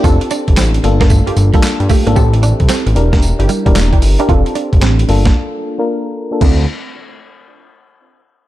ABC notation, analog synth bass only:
X:1
M:4/4
L:1/16
Q:"Swing 16ths" 1/4=113
K:Dm
V:1 name="Analog synth bass" clef=bass
F,,, z2 F,,, A,,,2 G,,,3 G,,, G,,, z2 G,, z ^G,,, | A,,,3 C,, z A,,, E,,,3 G,,, z E,,, E,,,2 G,,, z | F,,, z2 F,,, A,,,2 G,,,2 z8 | D,,2 z12 z2 |]